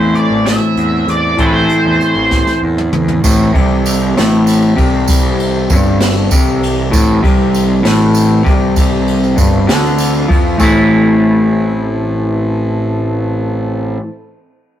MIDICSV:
0, 0, Header, 1, 6, 480
1, 0, Start_track
1, 0, Key_signature, 0, "minor"
1, 0, Tempo, 614125
1, 1086, Time_signature, 6, 3, 24, 8
1, 11568, End_track
2, 0, Start_track
2, 0, Title_t, "Lead electric guitar"
2, 0, Program_c, 0, 29
2, 0, Note_on_c, 0, 72, 82
2, 115, Note_on_c, 0, 74, 82
2, 129, Note_off_c, 0, 72, 0
2, 362, Note_off_c, 0, 74, 0
2, 366, Note_on_c, 0, 76, 90
2, 816, Note_off_c, 0, 76, 0
2, 859, Note_on_c, 0, 74, 75
2, 1094, Note_on_c, 0, 72, 83
2, 1101, Note_off_c, 0, 74, 0
2, 1139, Note_off_c, 0, 72, 0
2, 1142, Note_on_c, 0, 71, 67
2, 1197, Note_off_c, 0, 71, 0
2, 1200, Note_on_c, 0, 72, 83
2, 2022, Note_off_c, 0, 72, 0
2, 11568, End_track
3, 0, Start_track
3, 0, Title_t, "Transistor combo organ"
3, 0, Program_c, 1, 18
3, 0, Note_on_c, 1, 52, 60
3, 0, Note_on_c, 1, 60, 52
3, 0, Note_on_c, 1, 69, 65
3, 2493, Note_off_c, 1, 60, 0
3, 2499, Note_off_c, 1, 69, 0
3, 2503, Note_off_c, 1, 52, 0
3, 2533, Note_on_c, 1, 69, 71
3, 2535, Note_on_c, 1, 60, 61
3, 2540, Note_on_c, 1, 52, 62
3, 8258, Note_off_c, 1, 69, 0
3, 8259, Note_off_c, 1, 60, 0
3, 8262, Note_off_c, 1, 52, 0
3, 8301, Note_on_c, 1, 60, 62
3, 8301, Note_on_c, 1, 69, 73
3, 8302, Note_on_c, 1, 52, 62
3, 10930, Note_off_c, 1, 60, 0
3, 10931, Note_off_c, 1, 69, 0
3, 10932, Note_off_c, 1, 52, 0
3, 11568, End_track
4, 0, Start_track
4, 0, Title_t, "Clean electric guitar"
4, 0, Program_c, 2, 27
4, 0, Note_on_c, 2, 45, 79
4, 0, Note_on_c, 2, 52, 79
4, 0, Note_on_c, 2, 57, 71
4, 0, Note_on_c, 2, 60, 77
4, 0, Note_on_c, 2, 64, 86
4, 1071, Note_off_c, 2, 45, 0
4, 1074, Note_on_c, 2, 45, 81
4, 1078, Note_off_c, 2, 52, 0
4, 1081, Note_on_c, 2, 52, 71
4, 1087, Note_off_c, 2, 57, 0
4, 1090, Note_on_c, 2, 57, 79
4, 1098, Note_off_c, 2, 60, 0
4, 1101, Note_on_c, 2, 60, 82
4, 1104, Note_off_c, 2, 64, 0
4, 1107, Note_on_c, 2, 64, 81
4, 2513, Note_off_c, 2, 45, 0
4, 2516, Note_off_c, 2, 52, 0
4, 2521, Note_off_c, 2, 57, 0
4, 2526, Note_off_c, 2, 60, 0
4, 2529, Note_off_c, 2, 64, 0
4, 2533, Note_on_c, 2, 45, 93
4, 2765, Note_off_c, 2, 45, 0
4, 2769, Note_on_c, 2, 48, 97
4, 3245, Note_off_c, 2, 48, 0
4, 3261, Note_on_c, 2, 45, 103
4, 3719, Note_off_c, 2, 45, 0
4, 3722, Note_on_c, 2, 48, 104
4, 4443, Note_off_c, 2, 48, 0
4, 4453, Note_on_c, 2, 43, 103
4, 4928, Note_off_c, 2, 43, 0
4, 4939, Note_on_c, 2, 48, 99
4, 5401, Note_off_c, 2, 48, 0
4, 5404, Note_on_c, 2, 45, 101
4, 5643, Note_off_c, 2, 45, 0
4, 5651, Note_on_c, 2, 48, 105
4, 6118, Note_off_c, 2, 48, 0
4, 6121, Note_on_c, 2, 45, 112
4, 6597, Note_off_c, 2, 45, 0
4, 6600, Note_on_c, 2, 48, 110
4, 7317, Note_on_c, 2, 43, 99
4, 7318, Note_off_c, 2, 48, 0
4, 7557, Note_off_c, 2, 43, 0
4, 7560, Note_on_c, 2, 50, 107
4, 8034, Note_off_c, 2, 50, 0
4, 8037, Note_on_c, 2, 53, 105
4, 8270, Note_on_c, 2, 45, 83
4, 8272, Note_off_c, 2, 53, 0
4, 8275, Note_on_c, 2, 52, 91
4, 8285, Note_on_c, 2, 57, 89
4, 8294, Note_on_c, 2, 60, 86
4, 8304, Note_on_c, 2, 64, 102
4, 11005, Note_off_c, 2, 45, 0
4, 11011, Note_off_c, 2, 52, 0
4, 11021, Note_off_c, 2, 57, 0
4, 11029, Note_off_c, 2, 60, 0
4, 11039, Note_off_c, 2, 64, 0
4, 11568, End_track
5, 0, Start_track
5, 0, Title_t, "Picked electric bass"
5, 0, Program_c, 3, 34
5, 0, Note_on_c, 3, 40, 70
5, 98, Note_off_c, 3, 40, 0
5, 235, Note_on_c, 3, 33, 76
5, 442, Note_off_c, 3, 33, 0
5, 600, Note_on_c, 3, 40, 81
5, 805, Note_off_c, 3, 40, 0
5, 837, Note_on_c, 3, 40, 78
5, 1044, Note_off_c, 3, 40, 0
5, 1084, Note_on_c, 3, 33, 98
5, 1289, Note_off_c, 3, 33, 0
5, 1452, Note_on_c, 3, 40, 71
5, 1552, Note_off_c, 3, 40, 0
5, 1688, Note_on_c, 3, 33, 81
5, 1892, Note_off_c, 3, 33, 0
5, 2053, Note_on_c, 3, 40, 81
5, 2256, Note_off_c, 3, 40, 0
5, 2290, Note_on_c, 3, 40, 74
5, 2494, Note_off_c, 3, 40, 0
5, 2535, Note_on_c, 3, 33, 95
5, 2758, Note_off_c, 3, 33, 0
5, 2774, Note_on_c, 3, 36, 91
5, 3224, Note_off_c, 3, 36, 0
5, 3266, Note_on_c, 3, 33, 97
5, 3710, Note_off_c, 3, 33, 0
5, 3735, Note_on_c, 3, 36, 94
5, 4425, Note_off_c, 3, 36, 0
5, 4457, Note_on_c, 3, 31, 98
5, 4906, Note_off_c, 3, 31, 0
5, 4942, Note_on_c, 3, 36, 101
5, 5388, Note_off_c, 3, 36, 0
5, 5423, Note_on_c, 3, 33, 98
5, 5643, Note_off_c, 3, 33, 0
5, 5662, Note_on_c, 3, 36, 98
5, 6107, Note_off_c, 3, 36, 0
5, 6143, Note_on_c, 3, 33, 93
5, 6587, Note_off_c, 3, 33, 0
5, 6622, Note_on_c, 3, 36, 91
5, 7305, Note_off_c, 3, 36, 0
5, 7332, Note_on_c, 3, 31, 95
5, 7555, Note_off_c, 3, 31, 0
5, 7570, Note_on_c, 3, 38, 97
5, 8019, Note_off_c, 3, 38, 0
5, 8054, Note_on_c, 3, 41, 89
5, 8275, Note_off_c, 3, 41, 0
5, 8290, Note_on_c, 3, 33, 92
5, 10920, Note_off_c, 3, 33, 0
5, 11568, End_track
6, 0, Start_track
6, 0, Title_t, "Drums"
6, 117, Note_on_c, 9, 42, 59
6, 195, Note_off_c, 9, 42, 0
6, 362, Note_on_c, 9, 42, 84
6, 363, Note_on_c, 9, 38, 100
6, 440, Note_off_c, 9, 42, 0
6, 441, Note_off_c, 9, 38, 0
6, 603, Note_on_c, 9, 42, 66
6, 681, Note_off_c, 9, 42, 0
6, 846, Note_on_c, 9, 42, 69
6, 924, Note_off_c, 9, 42, 0
6, 1081, Note_on_c, 9, 42, 76
6, 1086, Note_on_c, 9, 36, 92
6, 1159, Note_off_c, 9, 42, 0
6, 1164, Note_off_c, 9, 36, 0
6, 1322, Note_on_c, 9, 42, 65
6, 1401, Note_off_c, 9, 42, 0
6, 1567, Note_on_c, 9, 42, 60
6, 1645, Note_off_c, 9, 42, 0
6, 1806, Note_on_c, 9, 38, 59
6, 1809, Note_on_c, 9, 36, 72
6, 1884, Note_off_c, 9, 38, 0
6, 1888, Note_off_c, 9, 36, 0
6, 1930, Note_on_c, 9, 38, 55
6, 2008, Note_off_c, 9, 38, 0
6, 2175, Note_on_c, 9, 47, 62
6, 2253, Note_off_c, 9, 47, 0
6, 2288, Note_on_c, 9, 45, 81
6, 2366, Note_off_c, 9, 45, 0
6, 2409, Note_on_c, 9, 43, 71
6, 2488, Note_off_c, 9, 43, 0
6, 2530, Note_on_c, 9, 49, 120
6, 2531, Note_on_c, 9, 54, 94
6, 2535, Note_on_c, 9, 36, 100
6, 2608, Note_off_c, 9, 49, 0
6, 2609, Note_off_c, 9, 54, 0
6, 2613, Note_off_c, 9, 36, 0
6, 2776, Note_on_c, 9, 36, 101
6, 2776, Note_on_c, 9, 51, 65
6, 2854, Note_off_c, 9, 51, 0
6, 2855, Note_off_c, 9, 36, 0
6, 3014, Note_on_c, 9, 54, 93
6, 3017, Note_on_c, 9, 51, 72
6, 3092, Note_off_c, 9, 54, 0
6, 3095, Note_off_c, 9, 51, 0
6, 3262, Note_on_c, 9, 51, 97
6, 3264, Note_on_c, 9, 38, 113
6, 3340, Note_off_c, 9, 51, 0
6, 3342, Note_off_c, 9, 38, 0
6, 3493, Note_on_c, 9, 54, 86
6, 3503, Note_on_c, 9, 51, 75
6, 3571, Note_off_c, 9, 54, 0
6, 3582, Note_off_c, 9, 51, 0
6, 3735, Note_on_c, 9, 51, 77
6, 3737, Note_on_c, 9, 54, 34
6, 3738, Note_on_c, 9, 36, 94
6, 3813, Note_off_c, 9, 51, 0
6, 3815, Note_off_c, 9, 54, 0
6, 3816, Note_off_c, 9, 36, 0
6, 3968, Note_on_c, 9, 54, 100
6, 3976, Note_on_c, 9, 51, 99
6, 3977, Note_on_c, 9, 36, 109
6, 4046, Note_off_c, 9, 54, 0
6, 4054, Note_off_c, 9, 51, 0
6, 4055, Note_off_c, 9, 36, 0
6, 4217, Note_on_c, 9, 51, 76
6, 4295, Note_off_c, 9, 51, 0
6, 4453, Note_on_c, 9, 54, 96
6, 4454, Note_on_c, 9, 51, 75
6, 4458, Note_on_c, 9, 36, 106
6, 4531, Note_off_c, 9, 54, 0
6, 4532, Note_off_c, 9, 51, 0
6, 4536, Note_off_c, 9, 36, 0
6, 4693, Note_on_c, 9, 51, 99
6, 4694, Note_on_c, 9, 38, 108
6, 4771, Note_off_c, 9, 51, 0
6, 4772, Note_off_c, 9, 38, 0
6, 4932, Note_on_c, 9, 54, 102
6, 4938, Note_on_c, 9, 36, 107
6, 4938, Note_on_c, 9, 51, 83
6, 5010, Note_off_c, 9, 54, 0
6, 5016, Note_off_c, 9, 36, 0
6, 5016, Note_off_c, 9, 51, 0
6, 5059, Note_on_c, 9, 54, 33
6, 5137, Note_off_c, 9, 54, 0
6, 5183, Note_on_c, 9, 51, 76
6, 5191, Note_on_c, 9, 54, 31
6, 5262, Note_off_c, 9, 51, 0
6, 5269, Note_off_c, 9, 54, 0
6, 5416, Note_on_c, 9, 49, 91
6, 5419, Note_on_c, 9, 36, 100
6, 5420, Note_on_c, 9, 54, 96
6, 5494, Note_off_c, 9, 49, 0
6, 5497, Note_off_c, 9, 36, 0
6, 5498, Note_off_c, 9, 54, 0
6, 5658, Note_on_c, 9, 36, 97
6, 5661, Note_on_c, 9, 51, 72
6, 5736, Note_off_c, 9, 36, 0
6, 5739, Note_off_c, 9, 51, 0
6, 5897, Note_on_c, 9, 54, 96
6, 5901, Note_on_c, 9, 51, 69
6, 5975, Note_off_c, 9, 54, 0
6, 5979, Note_off_c, 9, 51, 0
6, 6136, Note_on_c, 9, 51, 98
6, 6137, Note_on_c, 9, 38, 110
6, 6214, Note_off_c, 9, 51, 0
6, 6215, Note_off_c, 9, 38, 0
6, 6367, Note_on_c, 9, 54, 90
6, 6379, Note_on_c, 9, 51, 69
6, 6445, Note_off_c, 9, 54, 0
6, 6457, Note_off_c, 9, 51, 0
6, 6614, Note_on_c, 9, 54, 29
6, 6616, Note_on_c, 9, 36, 114
6, 6621, Note_on_c, 9, 51, 66
6, 6692, Note_off_c, 9, 54, 0
6, 6695, Note_off_c, 9, 36, 0
6, 6700, Note_off_c, 9, 51, 0
6, 6848, Note_on_c, 9, 54, 86
6, 6854, Note_on_c, 9, 36, 96
6, 6857, Note_on_c, 9, 51, 89
6, 6927, Note_off_c, 9, 54, 0
6, 6933, Note_off_c, 9, 36, 0
6, 6935, Note_off_c, 9, 51, 0
6, 7093, Note_on_c, 9, 51, 71
6, 7171, Note_off_c, 9, 51, 0
6, 7219, Note_on_c, 9, 54, 27
6, 7297, Note_off_c, 9, 54, 0
6, 7330, Note_on_c, 9, 54, 91
6, 7332, Note_on_c, 9, 51, 74
6, 7333, Note_on_c, 9, 36, 100
6, 7408, Note_off_c, 9, 54, 0
6, 7410, Note_off_c, 9, 51, 0
6, 7411, Note_off_c, 9, 36, 0
6, 7573, Note_on_c, 9, 51, 100
6, 7574, Note_on_c, 9, 38, 115
6, 7580, Note_on_c, 9, 54, 27
6, 7651, Note_off_c, 9, 51, 0
6, 7652, Note_off_c, 9, 38, 0
6, 7658, Note_off_c, 9, 54, 0
6, 7697, Note_on_c, 9, 54, 29
6, 7775, Note_off_c, 9, 54, 0
6, 7803, Note_on_c, 9, 54, 86
6, 7815, Note_on_c, 9, 51, 78
6, 7881, Note_off_c, 9, 54, 0
6, 7893, Note_off_c, 9, 51, 0
6, 7927, Note_on_c, 9, 54, 30
6, 8005, Note_off_c, 9, 54, 0
6, 8053, Note_on_c, 9, 36, 104
6, 8060, Note_on_c, 9, 51, 73
6, 8131, Note_off_c, 9, 36, 0
6, 8138, Note_off_c, 9, 51, 0
6, 8282, Note_on_c, 9, 54, 78
6, 8290, Note_on_c, 9, 36, 98
6, 8291, Note_on_c, 9, 49, 77
6, 8360, Note_off_c, 9, 54, 0
6, 8368, Note_off_c, 9, 36, 0
6, 8369, Note_off_c, 9, 49, 0
6, 11568, End_track
0, 0, End_of_file